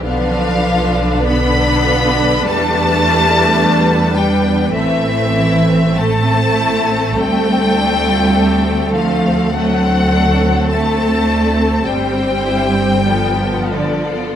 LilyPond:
<<
  \new Staff \with { instrumentName = "Violin section" } { \time 4/4 \key d \dorian \tempo 4 = 51 f''4 b''4 a''4. g''8 | e''4 a''4 g''4. f''8 | fis''4 a''4 g''4. d''8 | }
  \new Staff \with { instrumentName = "Violin section" } { \time 4/4 \key d \dorian << { b'1~ | b'4 a'2. | a'2 c''4 a'4 | } \\ { b16 d'16 f'16 d'16 b16 d'16 f'16 d'16 g16 b16 d'16 e'16 d'16 b16 g16 b16 | a16 c'16 e'16 c'16 a16 c'16 e'16 c'16 a16 c'16 d'16 f'16 d'16 c'16 a16 c'16 | a16 c'16 d'16 c'16 a16 c'16 d'16 c'16 g16 c'16 e'16 c'16 g16 b16 d'16 f'16 | } >> }
  \new Staff \with { instrumentName = "Viola section" } { \time 4/4 \key d \dorian << { d'1 | c'1 | c'2. b4 | } \\ { d2 g2 | a1 | a2 g4 f4 | } >> }
  \new Staff \with { instrumentName = "Cello section" } { \clef bass \time 4/4 \key d \dorian f4 b4 a4. g8 | e4 a4 g4. f8 | fis4 a4 g4. d8 | }
  \new Staff \with { instrumentName = "Double bass section" } { \clef bass \time 4/4 \key d \dorian b,,2 e,2 | a,,2 d,2~ | d,2 g,,2 | }
>>